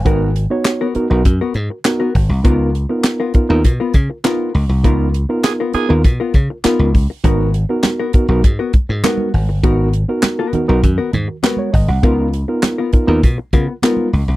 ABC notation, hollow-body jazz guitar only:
X:1
M:4/4
L:1/16
Q:1/4=100
K:G#dor
V:1 name="Hollow-body jazz guitar"
[B,FA]2 z3 [B,FA] z3 [B,FA] z3 [B,FA] z2 | [B,EA]2 z3 [B,EA] z3 [B,EA] z2 [B,EA]2 z2 | [B,EA]2 z3 [B,EA] z3 [B,EA] z2 [B,EA]2 z2 | [B,FA]2 z3 [B,FA] z3 [B,FA] z2 [B,FA]2 z2 |
[B,FA]2 z3 [B,FA] z3 [B,FA] z2 [B,FA]2 z2 | [B,EA]2 z3 [B,EA] z4 [B,EA] z [B,EA]2 z2 |]